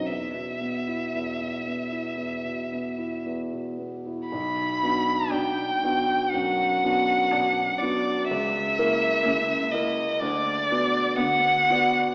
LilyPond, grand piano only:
\new Staff \with { instrumentName = "Grand piano" } { \time 4/4 \key c \lydian \tempo 4 = 60 e,16 b,16 b16 e'16 e,16 b,16 b16 e'16 e,16 b,16 b16 e'16 e,16 b,16 b16 e'16 | \key b \minor b,,8 <b d' fis'>4 <b d' fis'>8 fis,8 <b d' fis'>4 <b d' fis'>8 | cis,8 <ais e' ais'>4 <ais e' ais'>8 d,8 <b fis' d''>4 <b fis' d''>8 | }